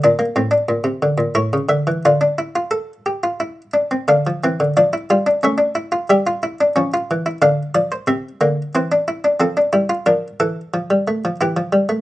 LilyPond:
<<
  \new Staff \with { instrumentName = "Harpsichord" } { \time 3/4 \key d \minor \tempo 4 = 90 << { d''2 cis''8 e''8 | d''2~ d''8 r8 | f''4 d''4 e''4 | e''2 f''8 d''16 c''16 |
e''4 c''4 a'4 | bes'8 a'4. g'4 | } \\ { d'16 bes16 c'16 d'4~ d'16 e'4 | f'16 d'16 e'16 f'16 a'8 g'16 f'16 e'8 d'16 c'16 | d'8 c'8 d'16 e'16 f'16 d'16 cis'16 d'16 e'16 f'16 | g'16 f'16 e'16 d'16 cis'16 f'8 e'16 d'4 |
c'8 bes8 c'16 d'16 e'16 d'16 c'16 d'16 e'16 f'16 | d'2 e'4 | } >> }
  \new Staff \with { instrumentName = "Harpsichord" } { \clef bass \time 3/4 \key d \minor bes,8 a,8 bes,16 c16 d16 bes,16 a,16 cis16 d16 e16 | d2~ d8 r8 | d16 f16 e16 d16 f8 g8 a4 | g4 f8 e8 d8 f8 |
c8 d8 e4 f8 g8 | f8 e8 f16 g16 a16 f16 e16 f16 g16 a16 | }
>>